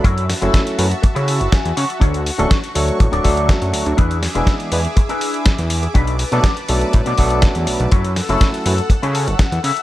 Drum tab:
HH |xxoxxxoxxxoxxxox|xxoxxxoxxxoxxxox|xxoxxxoxxxoxxxox|xxoxxxoxxxoxxxox|
SD |--o-o-------o---|----o-------o---|--o-o-------o---|----o-------o---|
BD |o---o---o---o---|o---o---o-o-o---|o---o---o---o---|o---o---o-o-o---|

HH |xxoxxxoxxxoxxxox|
SD |--o-o-------o---|
BD |o---o---o---o---|